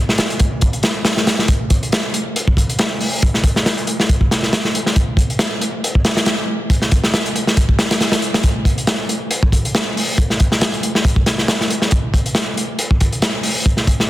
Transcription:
0.09 snare
0.18 snare, closed hi-hat
0.30 closed hi-hat
0.39 kick, closed hi-hat
0.61 kick, closed hi-hat
0.73 closed hi-hat
0.83 snare, closed hi-hat
1.05 snare, closed hi-hat
1.17 snare
1.27 snare, closed hi-hat
1.39 snare
1.48 kick, closed hi-hat
1.70 kick, closed hi-hat
1.83 closed hi-hat
1.92 snare, closed hi-hat
2.14 closed hi-hat
2.36 closed hi-hat
2.48 kick
2.57 kick, closed hi-hat
2.69 closed hi-hat
2.79 snare, closed hi-hat
3.00 open hi-hat
3.22 kick, closed hi-hat
3.34 snare
3.44 kick, closed hi-hat
3.56 snare
3.66 snare, closed hi-hat
3.78 closed hi-hat
3.87 closed hi-hat
4.00 snare
4.09 kick, closed hi-hat
4.21 kick
4.31 snare, closed hi-hat
4.43 snare
4.53 snare, closed hi-hat
4.65 snare
4.75 closed hi-hat
4.86 snare
4.96 kick, closed hi-hat
5.17 kick, closed hi-hat
5.30 closed hi-hat
5.39 snare, closed hi-hat
5.61 closed hi-hat
5.84 closed hi-hat
5.95 kick
6.05 snare, closed hi-hat
6.17 snare, closed hi-hat
6.26 snare, closed hi-hat
6.70 kick, closed hi-hat
6.82 snare
6.91 kick, closed hi-hat
7.04 snare
7.14 snare, closed hi-hat
7.26 closed hi-hat
7.36 closed hi-hat
7.47 snare
7.57 kick, closed hi-hat
7.69 kick
7.79 snare, closed hi-hat
7.91 snare, closed hi-hat
8.01 snare, closed hi-hat
8.12 snare, closed hi-hat
8.22 closed hi-hat
8.34 snare, closed hi-hat
8.43 kick, closed hi-hat
8.65 kick, closed hi-hat
8.78 closed hi-hat
8.87 snare, closed hi-hat
9.09 closed hi-hat
9.31 closed hi-hat
9.43 kick
9.52 kick, closed hi-hat
9.65 closed hi-hat
9.75 snare, closed hi-hat
9.97 open hi-hat
10.18 kick, closed hi-hat
10.30 snare
10.40 kick, closed hi-hat
10.52 snare
10.61 snare, closed hi-hat
10.74 closed hi-hat
10.83 closed hi-hat
10.95 snare
11.05 kick, closed hi-hat
11.16 kick
11.26 snare, closed hi-hat
11.38 snare
11.48 snare, closed hi-hat
11.61 snare
11.70 closed hi-hat
11.82 snare
11.91 kick, closed hi-hat
12.14 kick, closed hi-hat
12.26 closed hi-hat
12.35 snare, closed hi-hat
12.57 closed hi-hat
12.79 closed hi-hat
12.91 kick
13.00 kick, closed hi-hat
13.12 closed hi-hat
13.22 snare, closed hi-hat
13.43 open hi-hat
13.66 kick, closed hi-hat
13.77 snare
13.87 kick, closed hi-hat
14.00 snare

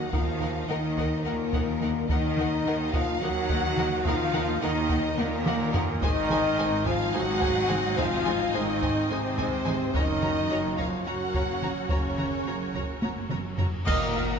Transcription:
Already playing: F#3 A#3 D#4 F#4 D#5 F#5 A#5
0.11 D#2 D#3 F3 A#3 D#4 F4 A#4 F5 F#5, taiko
0.40 A#3 D#4 A#4 F#5, taiko mid
0.69 D#2 D#3 A#3 D#4 A#4 D#5 F#5
0.97 A#3 D#4 A#4 F#5, taiko
1.23 D#2 A#2 D#3 A#3 D#4 A#4 F#5
1.53 A#3 D#4 A#4 F#5, taiko
1.81 A#3 D#4 A#4 F#5, taiko mid
2.07 D#2 D#3 A#3 D#4 A#4 D#5 F#5 A#5, taiko
2.37 A#3 D#4 A#4 F#5, taiko mid
2.65 D#2 D#3 A#3 D#4 A#4 F#5
2.92 F3 A#3 D#4 F4 A#4 F5 F#5, taiko
3.20 D#2 D#3 F#3 A#3 D#4 F#4 A#4 F#5
3.49 A#3 D#4 A#4 F#5, taiko
3.77 A#3 D#4 A#4 F#5, taiko mid
4.04 D#2 D#3 F3 A#3 D#4 F4 A#4 F5 F#5, taiko
4.33 A#3 D#4 A#4 F#5, taiko mid
4.61 D#2 D#3 A#3 D#4 A#4 D#5 F#5
4.89 A#3 D#4 A#4 F#5, taiko
5.17 D#2 A#2 D#3 A#3 D#4 A#4 F#5, taiko high
5.45 A#3 D#4 A#4 F#5, taiko mid
5.74 A#3 D#4 A#4 F#5, taiko low
6.02 G#1 G#2 D#3 G#3 C4 D#4 C5 D#5 G#5, taiko
6.30 G#3 D#4 C5 G#5, taiko mid
6.58 G#1 G#2 G#3 D#4 C5 G#5
6.85 F3 G#3 D#4 F4 C5 F5 G#5, taiko
7.13 G#1 G#2 F#3 G#3 D#4 F#4 C5 F#5 G#5
7.40 G#3 D#4 C5 G#5, taiko
7.68 G#3 D#4 C5 G#5, taiko mid
7.97 G#1 G#2 F3 G#3 D#4 F4 C5 F5 G#5, taiko
8.25 G#3 D#4 C5 G#5, taiko mid
8.54 G#1 G#2 D#3 G#3 D#4 C5 D#5 G#5
8.81 G#3 D#4 C5 G#5, taiko
9.10 G#1 G#2 C3 G#3 C4 D#4 C5 G#5
9.38 G#3 D#4 C5 G#5, taiko
9.66 G#3 D#4 C5 G#5, taiko mid
9.93 F#1 F#2 D#3 C#4 D#4 F#4 A#4 C#5 D#5 A#5, taiko
10.22 C#4 F#4 C#5 A#5, taiko mid
10.50 F#1 F#2 C#4 F#4 C#5 A#5
10.78 F3 C#4 F4 F#4 C#5 F5 A#5, taiko
11.05 F#1 F#2 F#3 C#4 F#4 C#5 F#5 A#5
11.34 C#4 F#4 C#5 A#5, taiko
11.62 C#4 F#4 C#5 A#5, taiko mid
11.89 F#1 F#2 C#3 C#4 F#4 C#5 A#5, taiko
12.18 C#4 F#4 C#5 A#5, taiko mid
12.46 F#1 F#2 C#4 F#4 C#5 A#5
12.74 C#4 F#4 C#5 A#5, taiko
13.02 F#1 F#2 C#4 F#4 C#5 A#5, taiko high
13.30 C#4 F#4 C#5 A#5, taiko mid
13.57 C#4 F#4 C#5 A#5, taiko low
13.85 D#2 A#2 D#3 A#3 D#4 A#4 D#5 F5 F#5 A#5, concert bass drum, taiko, crash
14.15 D#2 D#5 F5

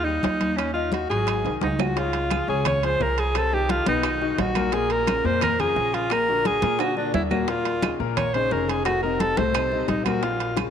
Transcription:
Already playing: D#2
0.04 G3 D#4 G4, high conga
0.23 D#2, high bongo, low bongo, high conga, high timbale, low timbale
0.40 A#3 A#4, high conga, high timbale
0.57 C#4, high bongo, high conga, high timbale, claves
0.74 D#4 F4 D#5, high bongo, high conga
0.92 F#4, high bongo, high conga, high timbale, low timbale
1.10 G#1 F#3 F#4 G#4, high conga, high timbale
1.27 high bongo, high conga, high timbale, claves
1.44 C2 D#3 D#4, high bongo, high conga, high timbale
1.61 C#2 D#4, high bongo, low bongo, high conga, high timbale
1.79 F3 F4 F#4, high bongo, high conga, low timbale, claves
1.96 C#3 C#4 F4 C#5, high bongo, high timbale
2.13 high conga, high timbale
2.30 F3 F4 G#4, high bongo, high conga, high timbale, claves
2.48 C#2 C#3 C#4 G#4 C#5, high conga
2.65 C#5, high bongo, high conga, low conga, high timbale, claves
2.83 F3 F4 G#4 C5, high bongo, high conga, high timbale
3.00 C2 F3 F4 G#4 A#4, high bongo, low bongo, high conga, low timbale
3.18 G#4, high bongo, high conga, high timbale
3.35 C3 C4 A4 C5, high bongo, high conga, high timbale, claves
3.52 D#3 D#4 G4, high conga
3.69 F4, high bongo, high conga, high timbale
3.86 B1 B2 B3 D#4 B4, high conga, high timbale
4.03 D#3 D#4 F#4, high bongo, high conga, high timbale, claves
4.21 D#3 D#4 F#4, high bongo, high conga
4.38 A#1 F#4, high bongo, low bongo, high conga, high timbale, low timbale
4.55 A#2 A#3 A#4, high bongo, high conga, high timbale, claves
4.72 A#2 A#3 G#4 A#4, high bongo, high timbale
4.90 A#4, high conga, high timbale
5.06 C#3 C#4 F4, high bongo, high conga, high timbale, claves
5.24 F2 A#2 A#3 A#4 C5, high conga
5.41 A#4, high bongo, high conga, low conga, high timbale, claves
5.59 C#3 C#4 F4 G#4, high bongo, high conga, low conga, high timbale
5.76 A#1 C#3 C#4 F4, high bongo, low bongo, high conga
5.93 F4, high bongo, high conga, high timbale
6.10 A#2 A#3 A#4, high bongo, high conga, high timbale, claves
6.28 D3 D4 F#4, high conga
6.45 G#4, high bongo, high conga, high timbale
6.62 A#2 A#3 A#4, high conga, high timbale
6.79 D3 D4 F#4, high bongo, high conga, high timbale, claves
6.97 D3 D4 F#4, high bongo, high conga
7.13 D#2 E4, high bongo, low bongo, high conga, low timbale
7.31 A#2 A#3 F#4 A#4, high bongo, high conga, low timbale, claves
7.48 A#2 A#3 F4 A#4, high bongo, high conga, high timbale
7.65 high conga, high timbale
7.82 C#3 C#4 D#4, high bongo, high conga, high timbale, claves
7.99 A#1 A#2 A#3 A#4, high conga
8.17 C#5, high bongo, high conga, low conga, high timbale, claves
8.34 C#3 C#4 D#4 C5, high bongo, high conga, high timbale
8.51 F1 C#3 C#4 D#4 A#4, high bongo, low bongo, high conga
8.68 G#4, high bongo, high conga, high timbale
8.85 A2 A3 F#4 A4, high bongo, high conga, high timbale, claves
9.03 C3 C4 D#4 A#4, high conga
9.20 A4, high bongo, high conga, high timbale
9.37 C2 A2 A3 A4 C5, high conga, high timbale
9.54 C3 C4 D#4, high bongo, high conga, high timbale, claves
9.72 C3 C4 D#4, high bongo, high conga
9.88 A#1 D#4, high bongo, low bongo, high conga, high timbale
10.04 A#2 A#3 F#4 A#4, high bongo, high conga, high timbale, claves
10.22 A#2 A#3 F4 A#4, high bongo, high conga, high timbale
10.40 high conga, high timbale
10.57 C#3 C#4 F4, high bongo, high conga, high timbale, claves

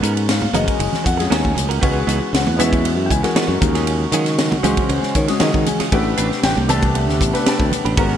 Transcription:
Already playing: G#3 C#4 F#4 B4 F#5
0.02 G#2 B3 C#4 F#4 A#4, hi-hat pedal, ride
0.16 muted clean electric guitar stroke, ride
0.29 F5, snare, ride
0.42 muted clean electric guitar stroke, high conga
0.53 F#1 G#3 B3 C#4 F#4 G#4 A#4 D#5, hi-hat pedal, ride, low conga
0.67 muted clean electric guitar stroke, kick, ride
0.79 F#1, muted clean electric guitar stroke, ride
0.93 muted fingered electric bass stroke, snare, low conga
1.04 F2 F#5, muted clean electric guitar stroke, kick, hi-hat pedal, ride
1.17 G#3 C#4 F#4 G#4, muted clean electric guitar stroke, snare, ride
1.30 D#2 B3 C#4 F#4 A#4, snare, ride
1.43 muted clean electric guitar stroke, kick, high conga
1.55 C#2, muted clean electric guitar stroke, hi-hat pedal, ride, low conga
1.69 C#4 F#4 A#4, ride
1.79 C#2 E3 G#3 B3 C#4 D#4 E4 F#4 B4 G5, kick, ride
1.84 G#5
2.07 C#2 E3 B3 D#4 F#4, hi-hat pedal, ride
2.21 muted clean electric guitar stroke
2.33 C#2 F#5, snare, ride
2.47 E2, muted clean electric guitar stroke, high conga
2.56 E3 G#3 B3 C#4 D#4 F#4 B4 D#5 E5, hi-hat pedal, ride, low conga
2.73 muted clean electric guitar stroke, kick, ride, high conga
2.85 muted clean electric guitar stroke, ride
2.97 F#2
3.06 G5
3.10 C#2 G#5, muted clean electric guitar stroke, kick, hi-hat pedal, ride
3.23 G#3 C#4 F#4 A#4, muted clean electric guitar stroke, snare, ride
3.35 E3 B3 D#4 F#4, muted fingered electric bass stroke, snare, ride
3.48 F#2, muted clean electric guitar stroke
3.60 D#2 C#3 G#3 C#4 F#4 A#4, muted clean electric guitar stroke, kick, hi-hat pedal, ride, low conga
3.75 C#4 F4 G#4, snare, ride
3.87 ride
4.12 D#3 F#3 C#4 F4 G#4, hi-hat pedal, ride
4.26 muted clean electric guitar stroke, snare, ride
4.38 snare, ride
4.52 muted clean electric guitar stroke, high conga
4.63 C#2 F#3 G#3 C#4 F4 F#4 G#4 C5, hi-hat pedal, ride, low conga
4.77 muted clean electric guitar stroke, kick, ride, high conga
4.89 C#2, muted clean electric guitar stroke, ride
5.03 snare
5.15 D#3 C#5, muted clean electric guitar stroke, kick, hi-hat pedal, ride
5.28 G#3 C#4 F#4 G#4, muted clean electric guitar stroke, snare, ride
5.40 D#3 F#3 C#4 F4 G#4 D#5, snare, ride
5.54 D#3, muted clean electric guitar stroke, kick
5.66 G#5, muted clean electric guitar stroke, hi-hat pedal, ride, low conga
5.80 C#4 F4 G#4, muted fingered electric bass stroke, snare, ride
5.92 A1 C3 A3 B3 C4 D4 G4 B4 F#5, kick, ride
6.17 A1 C4 D4 G4 B4, hi-hat pedal, ride
6.31 muted clean electric guitar stroke, snare
6.43 A1 G5, snare, ride
6.57 C2, muted clean electric guitar stroke, high conga
6.68 A3 C4 D4 G4 B4 A5, hi-hat pedal, ride, low conga
6.82 muted clean electric guitar stroke, kick, ride, high conga
6.95 E5, muted clean electric guitar stroke, ride
7.08 D2, snare
7.21 A1, muted clean electric guitar stroke, kick, hi-hat pedal, ride
7.33 A3 D4 G4 B4, muted clean electric guitar stroke, snare, ride
7.46 C4 D4 G4 B4 A5, muted fingered electric bass stroke, snare, ride
7.59 D2, muted clean electric guitar stroke, kick
7.72 muted clean electric guitar stroke, hi-hat pedal, ride, low conga
7.85 A1 D4 G4 B4, ride
7.97 G#1 C#3 G#3 B3 C#4 F#4 A#4 B4 A#5, kick, ride

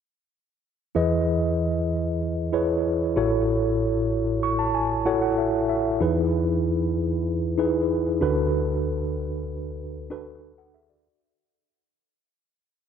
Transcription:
0.95 E2 E3 E4 G#4 B4 D#5
2.53 E4 G#4 B4 C#5
3.16 A1 A2 E4 F#4 A4 C#5
4.43 C#6
4.59 A5
4.75 G#5
5.05 E4 F#4 A4 C#5 F#5
5.22 F#5
5.38 E5
5.69 E5
6.00 E2 E3 D#4 E4 G#4 B4
7.58 D#4 E4 G#4 B4
8.21 D2 D3 D4 F#4 A4 B4
10.10 D4 F#4 A4 B4
10.58 A4 F#5
10.74 G#4 E5
10.89 F#4 D5

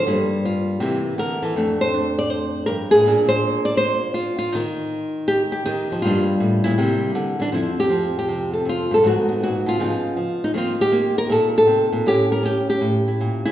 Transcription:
Already playing: C5
0.07 G2 G3 A#3 D4
0.45 F4
0.80 C3 E3 A#3 E4 G4
1.18 D3 A#4
1.42 E3 A4
1.56 F2 A3 D4
1.81 C5
1.94 D4
2.19 D5
2.30 C5
2.66 G2 A#4
2.91 A2 G#4
3.06 A#2 A#3 D4
3.29 C5
3.65 D5
3.77 C5
4.14 F4
4.39 F4
4.52 D#3 D#4
5.28 G4
5.52 G4
5.66 D#3 D#4
5.92 F3
6.02 G2 G3 A#3 F4
6.07 D4
6.40 A2
6.64 A#2 E4
6.78 C3 G3 A#3
7.15 D3
7.40 E3 D4
7.52 F2 F3 C4 E4
7.80 G4
7.89 F3 C4
8.19 G4
8.28 C3
8.53 A4
8.65 F2 F4
8.91 G2 A4
9.04 G#2 D#3 B3 F#4
9.29 B3
9.43 A#2 F#4
9.66 B2 F4
9.79 C#3 F3 B3 D#4
10.17 F3
10.44 D#4
10.54 D#3 A#3 C4 F4
10.81 G4
10.92 A#3
11.18 A#4
11.29 A#2 A4
11.58 A4
11.67 C3
11.93 A#2
12.06 A2 C#4 E4 G4
12.32 A#4
12.43 C#4 G4
12.70 G4
12.81 A2
13.08 E4
13.21 A#2
13.45 C#3 E4

